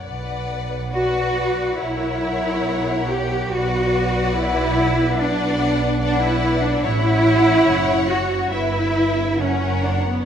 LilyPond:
<<
  \new Staff \with { instrumentName = "Violin section" } { \time 4/4 \key b \minor \tempo 4 = 70 fis''4 fis''4 fis''2 | fis''2 fis''4 fis''4 | fis''2 e''4 fis''4 | }
  \new Staff \with { instrumentName = "Violin section" } { \time 4/4 \key b \minor <b' d''>4 <b' d''>4 <ais' cis''>2 | <b' d''>2 <b' d''>4 <b' d''>4 | cis''2 b'4 <ais' cis''>4 | }
  \new Staff \with { instrumentName = "Cello section" } { \time 4/4 \key b \minor r4 fis'4 e'4. g'8 | fis'4 e'4 d'4 d'16 e'8 d'16 | e'4. fis'8 e'4 cis'8 d'16 b16 | }
  \new Staff \with { instrumentName = "Viola section" } { \time 4/4 \key b \minor r4 fis'4 e'4. g'8 | fis'4 e'4 d'4 d'16 e'8 d'16 | e'4. fis'8 e'4 cis'8 d'16 b16 | }
  \new Staff \with { instrumentName = "Double bass section" } { \clef bass \time 4/4 \key b \minor b,,2 b,,2 | b,,1 | a,,4 fis,,4 g,,4 fis,,4 | }
>>